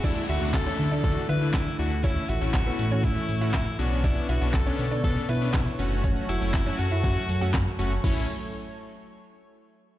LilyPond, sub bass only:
\new Staff \with { instrumentName = "Sub bass" } { \clef bass \time 4/4 \key a \major \tempo 4 = 120 r8 d,16 d,8. d4 d4 d,8~ | d,8 a,,16 a,,8. a,4 a,4 b,,8~ | b,,8 b,,16 b,,8. b,4 b,4 fis,,8~ | fis,,8 fis,,16 fis,,8. fis,4 fis,4 fis,,8 |
a,,8 r2. r8 | }